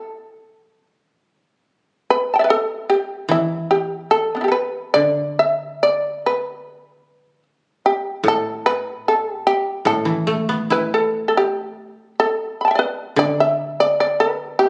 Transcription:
Already playing: A4
2.10 B4
2.34 G5 A5
2.39 D5 E5
2.44 B4
2.50 A4
2.90 G4
3.29 E3 E4
3.71 G4
4.11 A4
4.35 B3 D4
4.41 E4 G4
4.48 A4 B4
4.94 D3 D5
5.39 E5
5.83 D5
6.26 B4
7.86 G4
8.24 A2
8.28 A4
8.66 B4
9.08 A4
9.33 G4
9.47 G4
9.85 A2 A4
10.05 E3
10.27 A3
10.49 B3
10.70 E4 B4
10.94 A4
11.28 A4
11.37 G4
12.20 A4
12.61 A5 B5
12.68 E5 G5
12.75 B4 D5
13.16 D3 D5
13.40 E5
13.80 D5
14.00 D5
14.20 B4
14.59 G4

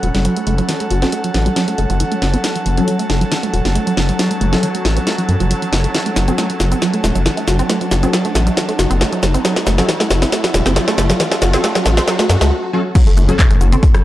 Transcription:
Already playing: F#3 C#4 A4 F#5 B5, riser
0.03 E1 F#3, open hi-hat
0.15 F#1 G3, snare, closed hi-hat
0.25 F#3 A5, closed hi-hat
0.36 A3, closed hi-hat
0.47 F#1 A3, open hi-hat
0.58 F#3, closed hi-hat
0.69 E3, snare, closed hi-hat
0.80 A3, closed hi-hat
0.90 F#1 F#4, open hi-hat
1.02 F#3 C4 C#4 A4, snare, closed hi-hat
1.12 A3, closed hi-hat
1.24 F#3, closed hi-hat
1.34 A1 F#3, snare, open hi-hat
1.46 G3, closed hi-hat
1.56 F#3, snare, closed hi-hat
1.68 A3, closed hi-hat
1.78 F#1 A3, open hi-hat
1.90 F#1 F#3, closed hi-hat
2.00 E3, closed hi-hat
2.12 A3, closed hi-hat
2.22 F#1 F#4, snare, open hi-hat
2.34 C4, closed hi-hat
2.44 A3, snare, closed hi-hat
2.55 F#3, closed hi-hat
2.66 F#1 F#3, open hi-hat
2.77 F#3 G3 C#4 A4, closed hi-hat
2.88 F#3, closed hi-hat
2.99 A3, closed hi-hat
3.10 F#1 A3, snare, open hi-hat
3.21 F#3, closed hi-hat
3.32 E3, snare, closed hi-hat
3.43 A3, closed hi-hat
3.53 E1 F#4, open hi-hat
3.65 F#1 C4, snare, closed hi-hat
3.75 A3, closed hi-hat
3.87 F#3, closed hi-hat
3.97 F#1 F#3, snare, open hi-hat
4.09 G3, closed hi-hat
4.19 F#3, snare, closed hi-hat
4.31 A3, closed hi-hat
4.41 F#1 A3, open hi-hat
4.53 F#3 C#4 A4, snare, closed hi-hat
4.63 E3, closed hi-hat
4.75 A3, closed hi-hat
4.85 A1 F#4, snare, open hi-hat
4.97 C4, closed hi-hat
5.07 A3, snare, closed hi-hat
5.18 F#3, closed hi-hat
5.29 F#2 F#3, open hi-hat
5.40 F#1 F#3, closed hi-hat
5.51 F#3, closed hi-hat
5.62 F#3, closed hi-hat
5.72 F#1 F#3, snare, open hi-hat
5.84 A3, closed hi-hat
5.94 E3, snare, closed hi-hat, shaker
6.06 A3, closed hi-hat
6.16 F#1 F#4, snare, open hi-hat, shaker
6.28 F#3 C4 C#4 A4, closed hi-hat, shaker
6.38 A3, snare, closed hi-hat, shaker
6.50 F#3, closed hi-hat
6.60 F#1 F#3, snare, open hi-hat, shaker
6.72 C4, closed hi-hat, shaker
6.82 F#3, snare, closed hi-hat, shaker
6.94 A3, closed hi-hat
7.04 E1 A3, snare, open hi-hat, shaker
7.15 F#1 F#3, closed hi-hat, shaker
7.26 E3, snare, closed hi-hat, shaker
7.37 A3, closed hi-hat
7.48 F#1 F#4, snare, open hi-hat, shaker
7.59 C4, closed hi-hat, shaker
7.70 A3, snare, closed hi-hat, shaker
7.81 F#3, closed hi-hat
7.91 F#1 F#3, snare, open hi-hat, shaker
8.03 F#3 C4 C#4 A4, closed hi-hat, shaker
8.13 F#3, snare, closed hi-hat, shaker
8.25 A3, closed hi-hat
8.35 A1 A3, snare, open hi-hat, shaker
8.47 F#3, closed hi-hat, shaker
8.57 E3, snare, closed hi-hat, shaker
8.69 A3, closed hi-hat
8.79 F#1 F#4, snare, open hi-hat, shaker
8.91 F#1 C4, closed hi-hat, shaker
9.01 A3, snare, closed hi-hat, shaker
9.12 F#3, closed hi-hat
9.23 F#1 F#3, snare, open hi-hat, shaker
9.34 C4, closed hi-hat, shaker
9.45 F#3, snare, closed hi-hat, shaker
9.56 A3, snare, closed hi-hat
9.67 F#1 A3, snare, open hi-hat, shaker
9.78 F#3 C#4 A4, snare, closed hi-hat, shaker
9.89 E3, snare, closed hi-hat, shaker
10.00 A3, snare, closed hi-hat
10.10 F#1 F#4, snare, open hi-hat, shaker
10.22 C4, snare, closed hi-hat, shaker
10.32 A3, snare, closed hi-hat, shaker
10.44 F#3, snare, closed hi-hat
10.54 E1 F#3, snare, open hi-hat, shaker
10.66 F#1 C4, snare, closed hi-hat, shaker
10.76 F#3, snare, closed hi-hat, shaker
10.88 A3, snare, closed hi-hat
10.98 F#1 A3, snare, open hi-hat, shaker
11.10 F#3, snare, closed hi-hat, shaker
11.20 E3, snare, closed hi-hat, shaker
11.32 A3, snare, closed hi-hat
11.42 F#1 F#4, snare, open hi-hat, shaker
11.53 F#3 C4 C#4 A4, snare, closed hi-hat, shaker
11.64 A3, snare, closed hi-hat, shaker
11.75 F#3, snare, closed hi-hat
11.86 A1 F#3, snare, open hi-hat, shaker
11.97 C4, snare, closed hi-hat, shaker
12.08 F#3, snare, closed hi-hat, shaker
12.19 A3, snare, closed hi-hat
12.29 F#2 F#3, snare, open hi-hat, shaker
12.41 C#2 A3, snare, closed hi-hat, shaker
12.73 F#3 C#4 A4
12.95 F#3 C#4, kick, closed hi-hat, crash, impact, shaker
13.07 A3, closed hi-hat
13.17 F#1 A3, open hi-hat, shaker
13.24 A4
13.29 F#3 C#4 A4, closed hi-hat, shaker
13.39 E3, kick, clap, closed hi-hat, shaker
13.51 A3, closed hi-hat
13.61 F#1 F#4, open hi-hat, shaker
13.72 C4, closed hi-hat, shaker
13.83 A3, kick, closed hi-hat, shaker
13.94 F#3 F#5, cross-stick, closed hi-hat

